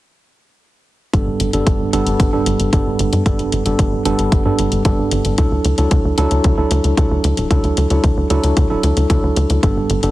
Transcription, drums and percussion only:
1.14 kick loud
1.14 closed hi-hat medium
1.40 closed hi-hat medium
1.53 closed hi-hat medium
1.67 kick loud
1.67 closed hi-hat medium
1.93 closed hi-hat medium
2.07 closed hi-hat medium
2.20 kick loud
2.20 closed hi-hat medium
2.46 closed hi-hat medium
2.60 closed hi-hat medium
2.73 kick loud
2.73 closed hi-hat medium
2.99 closed hi-hat medium
3.13 closed hi-hat medium
3.26 kick loud
3.26 closed hi-hat medium
3.39 closed hi-hat soft
3.52 closed hi-hat medium
3.66 closed hi-hat medium
3.79 kick loud
3.79 closed hi-hat medium
4.05 closed hi-hat medium
4.19 closed hi-hat medium
4.32 kick loud
4.32 closed hi-hat medium
4.59 closed hi-hat medium
4.72 closed hi-hat medium
4.85 kick loud
4.85 closed hi-hat medium
5.11 closed hi-hat medium
5.25 closed hi-hat medium
5.38 kick loud
5.38 closed hi-hat medium
5.65 closed hi-hat medium
5.78 closed hi-hat medium
5.91 kick loud
5.91 closed hi-hat medium
6.18 closed hi-hat medium
6.31 closed hi-hat medium
6.44 kick loud
6.44 closed hi-hat medium
6.71 closed hi-hat medium
6.84 closed hi-hat soft
6.97 kick loud
6.97 closed hi-hat medium
7.24 closed hi-hat medium
7.37 closed hi-hat medium
7.51 kick loud
7.51 closed hi-hat medium
7.64 closed hi-hat soft
7.77 closed hi-hat medium
7.90 closed hi-hat soft
8.04 kick loud
8.04 closed hi-hat medium
8.30 closed hi-hat medium
8.44 closed hi-hat medium
8.57 kick loud
8.57 closed hi-hat medium
8.83 closed hi-hat medium
8.97 closed hi-hat soft
9.10 kick loud
9.10 closed hi-hat medium
9.36 closed hi-hat medium
9.50 closed hi-hat soft
9.63 kick loud
9.63 closed hi-hat medium
9.90 closed hi-hat medium
10.03 closed hi-hat soft

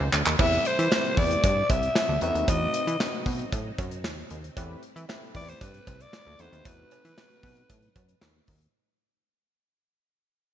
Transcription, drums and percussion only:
0.13 clap loud
0.26 clap loud
0.39 kick loud
0.39 crash medium
0.39 cowbell medium
0.52 closed hi-hat soft
0.65 closed hi-hat medium
0.79 closed hi-hat medium
0.92 snare loud
0.92 clap medium
0.92 cowbell medium
1.04 closed hi-hat soft
1.17 kick loud
1.17 open hi-hat medium
1.31 closed hi-hat soft
1.44 kick loud
1.44 closed hi-hat loud
1.44 cowbell medium
1.70 kick loud
1.70 closed hi-hat medium
1.70 cowbell medium
1.83 closed hi-hat medium
1.95 snare loud
1.95 clap medium
1.95 cowbell medium
2.21 closed hi-hat medium
2.35 closed hi-hat medium
2.48 kick loud
2.48 closed hi-hat loud
2.48 cowbell medium
2.74 closed hi-hat medium
2.87 closed hi-hat medium
3.00 snare loud
3.00 clap loud
3.00 cowbell medium
3.26 kick loud
3.26 open hi-hat medium
3.39 closed hi-hat medium
3.52 kick loud
3.52 closed hi-hat medium
3.52 cowbell medium
3.78 kick loud
3.78 closed hi-hat medium
3.78 cowbell medium
3.91 closed hi-hat medium
4.04 snare loud
4.04 clap medium
4.04 cowbell medium
4.30 closed hi-hat medium
4.44 closed hi-hat medium
4.57 kick loud
4.57 closed hi-hat loud
4.57 cowbell medium
4.83 closed hi-hat medium
4.97 closed hi-hat medium
5.09 snare loud
5.09 clap loud
5.09 cowbell medium
5.35 kick medium
5.35 open hi-hat medium
5.48 closed hi-hat medium
5.61 kick loud
5.61 closed hi-hat medium
5.61 cowbell medium
5.74 closed hi-hat soft
5.87 kick loud
5.87 closed hi-hat medium
5.87 cowbell medium
6.00 closed hi-hat medium
6.13 snare loud
6.13 clap medium
6.13 cowbell medium
6.39 closed hi-hat medium
6.53 closed hi-hat medium
6.65 kick loud
6.65 closed hi-hat loud
6.65 cowbell medium
6.91 closed hi-hat medium
6.91 cowbell medium
7.05 closed hi-hat medium
7.18 snare loud
7.18 clap loud
7.18 cowbell medium
7.30 closed hi-hat soft
7.43 kick medium
7.43 open hi-hat medium
7.57 closed hi-hat medium
7.70 kick loud
7.70 closed hi-hat medium
7.70 cowbell medium
7.82 closed hi-hat soft
7.96 kick loud
7.96 closed hi-hat medium
7.96 cowbell medium
8.09 closed hi-hat medium
8.21 snare loud
8.21 clap medium
8.21 cowbell medium
8.47 kick medium
8.47 open hi-hat medium
8.61 closed hi-hat soft

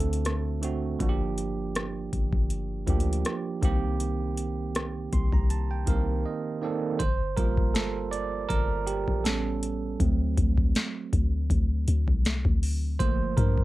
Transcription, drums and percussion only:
0.00 closed hi-hat medium
0.13 closed hi-hat medium
0.25 cross-stick medium
0.25 closed hi-hat medium
0.63 closed hi-hat medium
1.00 kick loud
1.00 closed hi-hat medium
1.38 closed hi-hat medium
1.75 cross-stick loud
1.75 closed hi-hat medium
2.13 kick medium
2.13 closed hi-hat medium
2.33 kick loud
2.50 closed hi-hat medium
2.87 kick medium
2.87 closed hi-hat medium
3.00 closed hi-hat medium
3.13 closed hi-hat medium
3.25 cross-stick medium
3.25 closed hi-hat medium
3.63 kick loud
3.63 closed hi-hat medium
4.00 closed hi-hat medium
4.37 closed hi-hat medium
4.75 cross-stick loud
4.75 closed hi-hat medium
5.13 kick medium
5.13 closed hi-hat medium
5.33 kick medium
5.50 closed hi-hat medium
5.87 kick medium
5.87 closed hi-hat medium
7.00 kick loud
7.00 closed hi-hat medium
7.37 kick loud
7.37 closed hi-hat medium
7.57 kick loud
7.75 snare loud
7.75 closed hi-hat medium
8.13 closed hi-hat medium
8.50 kick medium
8.50 closed hi-hat medium
8.87 closed hi-hat medium
9.08 kick medium
9.25 snare loud
9.25 closed hi-hat medium
9.63 closed hi-hat medium
10.00 kick loud
10.00 closed hi-hat medium
10.37 kick loud
10.37 closed hi-hat medium
10.58 kick loud
10.75 snare loud
10.75 closed hi-hat medium
11.13 kick medium
11.13 closed hi-hat medium
11.50 kick loud
11.50 closed hi-hat medium
11.88 closed hi-hat medium
12.08 kick medium
12.25 snare loud
12.25 closed hi-hat medium
12.45 kick loud
12.63 open hi-hat medium
13.00 kick loud
13.00 closed hi-hat medium
13.37 kick loud
13.37 closed hi-hat medium
13.58 kick loud

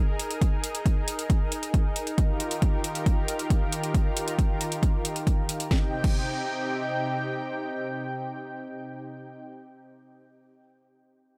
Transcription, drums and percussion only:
0.20 closed hi-hat medium
0.31 closed hi-hat medium
0.42 kick loud
0.42 closed hi-hat medium
0.64 closed hi-hat medium
0.75 closed hi-hat medium
0.86 kick loud
0.86 closed hi-hat medium
1.08 closed hi-hat medium
1.19 closed hi-hat medium
1.30 kick loud
1.30 closed hi-hat medium
1.52 closed hi-hat medium
1.63 closed hi-hat medium
1.74 kick loud
1.74 closed hi-hat medium
1.96 closed hi-hat medium
2.07 closed hi-hat medium
2.18 kick loud
2.18 closed hi-hat medium
2.40 closed hi-hat medium
2.51 closed hi-hat medium
2.62 kick loud
2.62 closed hi-hat medium
2.84 closed hi-hat medium
2.95 closed hi-hat medium
3.06 kick loud
3.06 closed hi-hat medium
3.28 closed hi-hat medium
3.39 closed hi-hat medium
3.50 kick loud
3.50 closed hi-hat medium
3.72 closed hi-hat medium
3.84 closed hi-hat medium
3.94 kick loud
3.94 closed hi-hat medium
4.17 closed hi-hat medium
4.28 closed hi-hat medium
4.39 kick loud
4.39 closed hi-hat medium
4.61 closed hi-hat medium
4.72 closed hi-hat medium
4.83 kick loud
4.83 closed hi-hat medium
5.05 closed hi-hat medium
5.16 closed hi-hat medium
5.27 kick loud
5.27 closed hi-hat medium
5.49 closed hi-hat medium
5.60 closed hi-hat medium
5.71 kick loud
5.71 snare medium
6.04 kick loud
6.04 crash medium

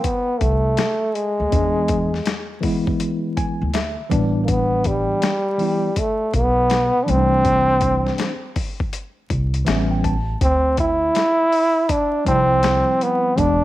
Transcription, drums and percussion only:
0.04 kick medium
0.04 closed hi-hat medium
0.41 kick medium
0.41 closed hi-hat medium
0.77 snare loud
0.77 closed hi-hat medium
1.15 closed hi-hat medium
1.52 kick loud
1.52 closed hi-hat medium
1.88 kick medium
1.88 closed hi-hat medium
2.14 snare soft
2.26 snare medium
2.26 closed hi-hat medium
2.63 kick medium
2.63 open hi-hat soft
2.87 kick medium
3.00 closed hi-hat medium
3.37 kick medium
3.37 closed hi-hat medium
3.73 snare loud
3.73 closed hi-hat medium
4.11 kick medium
4.11 closed hi-hat medium
4.48 kick loud
4.48 closed hi-hat medium
4.84 kick medium
4.84 closed hi-hat medium
5.22 snare loud
5.22 closed hi-hat medium
5.59 open hi-hat soft
5.96 kick medium
5.96 closed hi-hat medium
6.34 kick medium
6.34 closed hi-hat medium
6.70 snare loud
6.70 closed hi-hat medium
7.08 closed hi-hat medium
7.45 kick loud
7.45 closed hi-hat medium
7.81 kick medium
7.81 closed hi-hat medium
8.07 snare soft
8.18 snare loud
8.18 closed hi-hat medium
8.56 kick medium
8.56 open hi-hat soft
8.80 kick medium
8.93 closed hi-hat medium
9.30 kick medium
9.30 closed hi-hat medium
9.54 closed hi-hat soft
9.67 snare loud
9.67 closed hi-hat medium
10.04 kick medium
10.04 closed hi-hat medium
10.41 kick loud
10.41 closed hi-hat medium
10.77 kick medium
10.77 closed hi-hat medium
11.15 snare medium
11.15 closed hi-hat medium
11.52 open hi-hat soft
11.89 kick medium
11.89 closed hi-hat medium
12.26 kick medium
12.26 closed hi-hat medium
12.63 snare loud
12.63 closed hi-hat medium
13.01 closed hi-hat medium
13.38 kick loud
13.38 closed hi-hat medium

